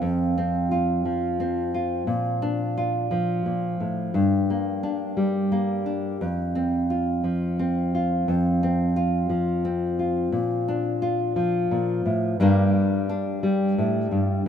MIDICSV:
0, 0, Header, 1, 2, 480
1, 0, Start_track
1, 0, Tempo, 688073
1, 10, Time_signature, 3, 2, 24, 8
1, 10103, End_track
2, 0, Start_track
2, 0, Title_t, "Nylon-string guitar"
2, 0, Program_c, 0, 24
2, 0, Note_on_c, 0, 53, 57
2, 0, Note_on_c, 0, 60, 61
2, 0, Note_on_c, 0, 65, 51
2, 11, Note_on_c, 0, 41, 78
2, 260, Note_off_c, 0, 60, 0
2, 262, Note_on_c, 0, 60, 53
2, 495, Note_off_c, 0, 65, 0
2, 498, Note_on_c, 0, 65, 61
2, 731, Note_off_c, 0, 53, 0
2, 734, Note_on_c, 0, 53, 54
2, 967, Note_off_c, 0, 60, 0
2, 976, Note_on_c, 0, 60, 50
2, 1208, Note_off_c, 0, 65, 0
2, 1217, Note_on_c, 0, 65, 51
2, 1422, Note_off_c, 0, 60, 0
2, 1423, Note_off_c, 0, 65, 0
2, 1442, Note_off_c, 0, 41, 0
2, 1445, Note_on_c, 0, 46, 70
2, 1690, Note_on_c, 0, 62, 57
2, 1935, Note_on_c, 0, 65, 60
2, 2160, Note_off_c, 0, 53, 0
2, 2169, Note_on_c, 0, 53, 62
2, 2404, Note_off_c, 0, 46, 0
2, 2413, Note_on_c, 0, 46, 62
2, 2649, Note_off_c, 0, 46, 0
2, 2653, Note_on_c, 0, 45, 53
2, 2857, Note_off_c, 0, 62, 0
2, 2860, Note_off_c, 0, 65, 0
2, 2886, Note_off_c, 0, 53, 0
2, 2887, Note_off_c, 0, 45, 0
2, 2890, Note_on_c, 0, 43, 78
2, 3141, Note_on_c, 0, 58, 53
2, 3371, Note_on_c, 0, 62, 62
2, 3605, Note_on_c, 0, 55, 55
2, 3841, Note_off_c, 0, 58, 0
2, 3849, Note_on_c, 0, 58, 54
2, 4079, Note_off_c, 0, 62, 0
2, 4088, Note_on_c, 0, 62, 56
2, 4296, Note_off_c, 0, 62, 0
2, 4297, Note_off_c, 0, 43, 0
2, 4326, Note_off_c, 0, 58, 0
2, 4333, Note_on_c, 0, 41, 75
2, 4354, Note_off_c, 0, 55, 0
2, 4571, Note_on_c, 0, 60, 57
2, 4814, Note_on_c, 0, 65, 59
2, 5049, Note_on_c, 0, 53, 54
2, 5295, Note_off_c, 0, 60, 0
2, 5297, Note_on_c, 0, 60, 56
2, 5540, Note_off_c, 0, 65, 0
2, 5543, Note_on_c, 0, 65, 53
2, 5768, Note_off_c, 0, 41, 0
2, 5777, Note_on_c, 0, 41, 75
2, 6018, Note_off_c, 0, 60, 0
2, 6020, Note_on_c, 0, 60, 63
2, 6250, Note_off_c, 0, 65, 0
2, 6253, Note_on_c, 0, 65, 63
2, 6481, Note_off_c, 0, 53, 0
2, 6484, Note_on_c, 0, 53, 61
2, 6722, Note_off_c, 0, 60, 0
2, 6730, Note_on_c, 0, 60, 57
2, 6962, Note_off_c, 0, 65, 0
2, 6970, Note_on_c, 0, 65, 47
2, 7178, Note_off_c, 0, 65, 0
2, 7179, Note_off_c, 0, 60, 0
2, 7199, Note_off_c, 0, 41, 0
2, 7202, Note_on_c, 0, 46, 75
2, 7453, Note_on_c, 0, 62, 62
2, 7687, Note_on_c, 0, 65, 68
2, 7917, Note_off_c, 0, 53, 0
2, 7925, Note_on_c, 0, 53, 67
2, 8163, Note_off_c, 0, 46, 0
2, 8171, Note_on_c, 0, 46, 69
2, 8408, Note_off_c, 0, 46, 0
2, 8410, Note_on_c, 0, 45, 64
2, 8619, Note_off_c, 0, 65, 0
2, 8646, Note_off_c, 0, 45, 0
2, 8646, Note_off_c, 0, 53, 0
2, 8649, Note_on_c, 0, 43, 75
2, 8653, Note_off_c, 0, 62, 0
2, 8653, Note_on_c, 0, 55, 69
2, 8656, Note_on_c, 0, 58, 69
2, 8662, Note_on_c, 0, 62, 63
2, 8666, Note_on_c, 0, 70, 64
2, 8892, Note_off_c, 0, 58, 0
2, 9126, Note_off_c, 0, 62, 0
2, 9134, Note_on_c, 0, 62, 66
2, 9361, Note_off_c, 0, 55, 0
2, 9369, Note_on_c, 0, 55, 62
2, 9610, Note_off_c, 0, 43, 0
2, 9615, Note_on_c, 0, 45, 64
2, 9844, Note_off_c, 0, 45, 0
2, 9846, Note_on_c, 0, 43, 62
2, 10062, Note_off_c, 0, 55, 0
2, 10064, Note_off_c, 0, 62, 0
2, 10070, Note_off_c, 0, 70, 0
2, 10085, Note_off_c, 0, 43, 0
2, 10103, End_track
0, 0, End_of_file